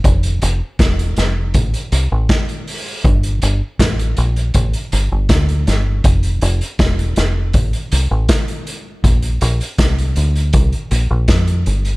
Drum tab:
HH |xxx-xxx-xxx-xxo-|xxx-xxxxxxx-xxx-|xxxxxxx-xxx-xxx-|xxxxxxxxxxx-xxxx|
SD |----o-o-----o---|----o-------o-o-|----o-o-----o---|----o-------o---|
BD |o---o---o---o---|o---o---o---o---|o---o---o---o---|o---o---o---o---|